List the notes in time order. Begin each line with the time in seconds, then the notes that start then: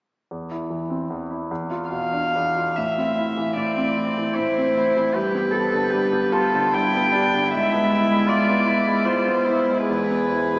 0.31 E2
0.51 E4
0.70 E3
0.90 C4
1.10 E2
1.31 E4
1.51 E2
1.71 F4
1.90 B2 F5
2.13 D4
2.35 E2
2.57 F4
2.75 A2 E5
2.98 C4
3.18 E4
3.37 E3
3.56 A2 C4 D5
3.77 C4
3.97 E4
4.18 E3
4.36 A2 E4 C5
4.58 C4
4.77 E4
4.97 E3
5.14 G2 G4 B4
5.35 B3
5.51 G4 A4
5.74 D3
5.90 G2 G4
6.13 B3
6.32 F4 G4 A4
6.54 D3
6.73 G2 E4 G5
6.96 B3
7.12 D4 G4
7.34 D3
7.50 E4 E5
7.54 G#2
7.73 B3
7.91 E4
8.11 G#3
8.27 G#2 F4 D5
8.50 B3
8.66 E4
8.88 G#3
9.05 G#2 F4 C5
9.28 B3
9.45 E4
9.69 G#3
9.87 E2 G#4 B4
10.11 B3
10.32 E4
10.54 B2